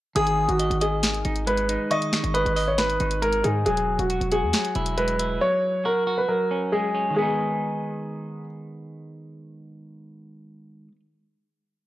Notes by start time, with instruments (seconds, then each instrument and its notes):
0.15 808-style bass G#1, clean electric guitar D#3, grand piano G#4, synth bell D#6, closed hi-hat
0.27 closed hi-hat
0.48 808-style bass G#1, grand piano F#4, closed hi-hat
0.59 clean electric guitar D#5, closed hi-hat
0.70 808-style bass G#1, closed hi-hat
0.81 grand piano G#4, clean electric guitar D#5, closed hi-hat
1.03 clean electric guitar D#3, finger snap, snare, closed hi-hat
1.14 closed hi-hat
1.25 808-style bass G#1, clean electric guitar D#4, closed hi-hat
1.36 closed hi-hat
1.47 clean electric guitar G#3, grand piano B4, closed hi-hat
1.57 closed hi-hat
1.69 clean electric guitar D#4, closed hi-hat
1.91 clean electric guitar D#3, grand piano D#5, synth bell C#6, closed hi-hat
2.02 closed hi-hat
2.13 finger snap, snare
2.24 808-style bass G#1, closed hi-hat
2.34 grand piano B4, clean electric guitar D#5, closed hi-hat
2.46 808-style bass G#1, closed hi-hat
2.56 clean electric guitar D#5, open hi-hat
2.68 grand piano C#5
2.78 clean electric guitar D#3, grand piano B4, finger snap, snare, closed hi-hat
2.90 closed hi-hat
3.00 808-style bass G#1, clean electric guitar D#4, closed hi-hat
3.11 closed hi-hat
3.22 clean electric guitar G#3, grand piano A#4, closed hi-hat
3.33 closed hi-hat
3.44 808-style bass G#2, clean electric guitar D#4, grand piano G#4, closed hi-hat
3.66 808-style bass E1, clean electric guitar F#3, grand piano G#4, closed hi-hat
3.77 closed hi-hat
3.99 808-style bass E1, grand piano F#4, closed hi-hat
4.10 clean electric guitar F#4, closed hi-hat
4.21 808-style bass E1, closed hi-hat
4.32 clean electric guitar F#4, grand piano G#4, closed hi-hat
4.43 808-style bass E2
4.53 clean electric guitar F#3, finger snap, snare, closed hi-hat
4.65 closed hi-hat
4.75 808-style bass E1, clean electric guitar E4, closed hi-hat
4.86 closed hi-hat
4.97 clean electric guitar G#3, grand piano B4, closed hi-hat
5.08 closed hi-hat
5.19 clean electric guitar E4, closed hi-hat
5.41 clean electric guitar F#3, grand piano C#5
5.85 clean electric guitar F#4, grand piano A#4
6.07 clean electric guitar F#4
6.18 grand piano B4
6.29 clean electric guitar F#3, grand piano A#4
6.51 clean electric guitar C#4
6.72 clean electric guitar G#3, grand piano G#4
6.94 clean electric guitar C#4
7.10 clean electric guitar D#3 G#3
7.16 clean electric guitar B3, grand piano G#4
7.22 clean electric guitar D#4